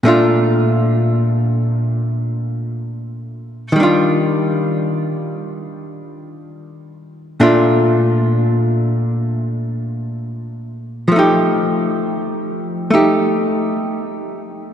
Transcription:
0.03 3.73 A#2 soft
0.03 3.74 A3 soft
0.03 3.75 D4 soft
0.08 3.76 F4 soft
3.72 7.40 D#3 soft
3.72 7.40 G3 soft
3.80 7.40 D4 soft
3.80 7.41 F4 soft
7.40 11.07 A#2 soft
7.40 11.08 A3 soft
7.40 11.08 D4 soft
7.40 11.09 F4 soft
11.08 14.73 F3 soft
11.08 12.89 A3 soft
11.16 12.92 D#4 soft
11.16 12.93 G4 soft
12.91 14.73 A3 soft
12.91 14.73 D#4 soft
12.91 14.73 G4 soft

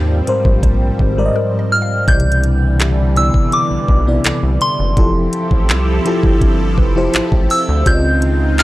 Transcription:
0.00 0.21 D#2 loud
0.00 0.27 G#2 medium
0.00 2.04 F3 medium
0.00 0.28 G3 medium
0.00 2.05 G3 medium
0.00 2.04 C4 medium
0.00 0.28 A#4 medium
0.00 0.29 C5 medium
0.00 0.96 G6 loud
0.27 1.01 G#2 medium
0.27 1.01 G3 medium
0.27 1.01 A#4 medium
0.27 1.02 C5 loud
0.27 closed hi-hat medium
0.45 0.91 A#1 loud
0.45 kick loud
0.63 2.40 C5 medium
0.63 kick medium
0.63 closed hi-hat medium
0.99 1.30 G#1 medium
0.99 kick medium
1.17 1.91 G#2 loud
1.17 1.91 G3 medium
1.17 1.92 A#4 medium
1.17 1.25 D5 medium
1.26 1.95 D#5 loud
1.36 2.40 A#4 medium
1.59 2.61 D#5 medium
1.72 2.06 F6 loud
1.82 2.81 F5 medium
2.08 3.30 C2 loud
2.08 2.96 B2 medium
2.08 2.96 C3 medium
2.08 4.94 D3 medium
2.08 4.94 E3 medium
2.08 2.97 E3 medium
2.08 4.94 G3 medium
2.08 2.97 D5 medium
2.08 2.76 G6 loud
2.08 kick loud
2.08 closed hi-hat soft
2.20 closed hi-hat medium
2.32 closed hi-hat medium
2.44 closed hi-hat medium
2.80 5.29 G4 medium
2.80 clap loud
2.80 closed hi-hat medium
3.16 3.90 C3 medium
3.16 3.90 B3 medium
3.16 3.90 E4 medium
3.16 3.91 D5 medium
3.16 3.54 E6 loud
3.16 closed hi-hat medium
3.34 kick medium
3.52 4.65 D6 loud
3.52 closed hi-hat medium
3.71 3.78 B1 soft
3.88 4.19 B1 loud
3.88 kick medium
4.07 4.80 C3 medium
4.07 4.81 B3 medium
4.07 4.81 E4 medium
4.07 4.81 D5 medium
4.24 4.32 C2 medium
4.24 5.29 A4 medium
4.24 clap loud
4.24 closed hi-hat medium
4.43 4.58 C2 medium
4.61 6.74 C6 loud
4.61 closed hi-hat medium
4.79 4.94 F#1 medium
4.97 5.27 F1 loud
4.97 7.83 F3 medium
4.97 5.85 F3 medium
4.97 7.83 C4 medium
4.97 7.83 E4 medium
4.97 5.86 E4 medium
4.97 7.83 G4 medium
4.97 5.86 G4 medium
4.97 7.83 A4 medium
4.97 5.86 A4 medium
4.97 kick loud
4.97 closed hi-hat medium
5.33 closed hi-hat medium
5.51 5.71 A1 medium
5.51 kick medium
5.69 6.00 C2 loud
5.69 clap loud
5.69 closed hi-hat medium
6.05 6.79 F3 medium
6.05 6.79 E4 medium
6.05 6.80 G4 medium
6.05 6.80 A4 loud
6.05 closed hi-hat medium
6.23 6.79 G1 medium
6.23 kick medium
6.41 kick medium
6.41 closed hi-hat medium
6.78 7.08 F1 loud
6.78 8.18 B4 medium
6.78 kick medium
6.96 7.69 F3 medium
6.96 7.70 E4 medium
6.96 7.70 G4 medium
6.96 7.70 C5 loud
7.14 7.21 A1 soft
7.14 clap loud
7.14 closed hi-hat medium
7.32 7.47 A1 medium
7.32 kick loud
7.50 7.88 E6 loud
7.50 open hi-hat medium
7.69 7.84 D2 loud
7.86 8.63 C#2 loud
7.86 8.63 C#3 medium
7.86 8.63 D#3 medium
7.86 8.63 G#3 medium
7.86 8.63 C4 medium
7.86 8.63 D#4 medium
7.86 8.63 F4 medium
7.86 7.94 D5 medium
7.86 8.55 G6 loud
7.86 kick loud
7.86 closed hi-hat medium
7.95 8.63 D#5 medium
8.22 closed hi-hat medium
8.58 8.63 C4 medium
8.58 8.63 F6 loud
8.58 clap loud
8.58 closed hi-hat medium

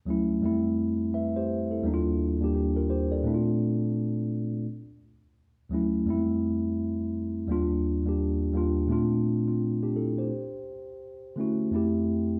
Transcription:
0.06 0.41 D2 medium
0.06 0.42 F#3 medium
0.06 0.42 A3 medium
0.06 0.43 C#4 medium
0.10 0.44 E4 medium
0.41 1.77 F2 medium
0.41 1.77 G3 medium
0.41 1.78 A3 medium
0.41 1.78 C4 medium
0.45 0.79 E4 medium
1.14 1.34 B4 soft
1.14 1.34 E5 medium
1.36 1.69 G4 medium
1.36 1.69 C5 medium
1.71 2.04 E4 soft
1.71 2.04 A4 medium
1.82 2.36 D#2 medium
1.82 2.37 G3 medium
1.82 2.37 A#3 medium
1.82 2.38 D4 medium
1.87 1.93 D#4 medium
1.94 2.42 F4 loud
2.39 2.86 D#2 medium
2.39 2.87 G3 medium
2.39 2.88 A#3 medium
2.39 2.54 D4 medium
2.44 2.53 G4 medium
2.55 2.75 D4 soft
2.55 2.75 G4 soft
2.77 2.89 F4 soft
2.77 2.89 A#4 medium
2.90 3.10 G4 medium
2.90 3.10 C5 medium
3.12 3.45 A4 soft
3.12 3.45 D5 medium
3.23 4.59 A#2 medium
3.23 4.59 A3 medium
3.23 4.60 C4 medium
3.23 4.61 D4 medium
3.28 3.34 E4 medium
3.34 4.65 F4 medium
5.69 6.06 D2 medium
5.69 6.06 F#3 medium
5.69 6.07 A3 medium
5.69 6.07 C#4 medium
5.75 6.08 E4 medium
6.05 7.41 F2 medium
6.05 7.42 G3 medium
6.05 6.15 G#3 medium
6.05 7.43 C4 medium
6.10 7.44 E4 medium
6.14 7.46 A3 medium
7.47 8.01 D#2 medium
7.47 8.01 G3 medium
7.47 8.02 A#3 medium
7.47 8.03 D4 medium
7.52 8.03 F4 loud
8.04 8.51 D#2 medium
8.04 8.52 G3 medium
8.04 8.52 A#3 medium
8.04 8.53 D4 medium
8.09 8.53 G4 medium
8.52 8.88 D#2 medium
8.52 8.89 G3 medium
8.52 8.89 A#3 medium
8.52 8.90 D4 medium
8.57 8.91 F4 medium
8.87 10.23 A#2 medium
8.87 10.24 A3 medium
8.87 9.25 C4 medium
8.87 9.25 D4 medium
8.92 9.26 F4 medium
9.48 9.81 C4 soft
9.48 9.80 F4 medium
9.83 9.95 D4 medium
9.83 9.95 G4 medium
9.96 10.16 E4 soft
9.96 10.16 A4 medium
10.18 10.51 G4 soft
10.18 10.51 C5 soft
11.36 11.71 D3 medium
11.36 11.71 A3 medium
11.36 11.72 C#4 medium
11.36 11.73 E4 medium
11.41 11.73 F#4 medium
11.71 12.40 F2 medium
11.71 12.40 A3 medium
11.71 12.40 C4 medium
11.71 12.40 E4 medium
11.76 12.40 G4 medium

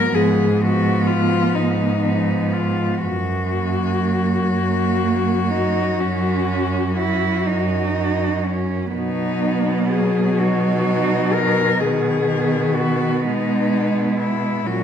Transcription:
0.00 0.10 F#3 medium
0.00 0.10 B3 medium
0.00 0.16 A#4 medium
0.11 1.36 G#2 medium
0.11 0.58 F3 medium
0.11 0.57 B3 medium
0.11 0.62 G#4 medium
0.59 1.99 F3 medium
0.59 1.99 B3 medium
0.59 1.09 F#4 medium
1.07 1.56 F4 medium
1.53 2.85 G#2 medium
1.53 2.54 D#4 medium
2.02 3.01 F3 soft
2.02 3.01 B3 soft
2.53 3.03 F4 medium
3.03 4.35 F#2 medium
3.03 8.42 F#4 medium
3.53 4.98 F#3 soft
3.53 4.41 A#3 soft
4.52 5.83 F#2 medium
4.52 5.52 A#3 medium
5.01 6.46 F#3 soft
5.50 6.02 D#4 medium
6.00 7.30 F#2 medium
6.00 6.97 C#4 medium
6.49 7.93 F#3 soft
6.97 7.48 E4 medium
7.46 8.78 F#2 medium
7.46 8.48 D#4 medium
7.96 8.93 F#3 soft
8.46 8.94 C#4 medium
8.95 14.63 B2 medium
8.95 11.81 F#3 medium
8.95 10.41 B3 medium
8.95 9.87 D#4 medium
9.90 10.40 G#4 medium
10.39 11.83 D#4 medium
10.39 11.35 F#4 medium
11.33 11.82 A#4 medium
11.80 13.25 D#3 medium
11.80 14.67 B3 medium
11.80 12.77 G#4 medium
12.75 13.23 F#4 medium
13.21 14.67 G#3 soft
13.21 14.18 D#4 medium
14.19 14.69 E4 medium
14.66 14.84 A#2 medium
14.66 14.84 F#3 medium
14.66 14.84 C#4 medium
14.66 14.84 F#4 medium

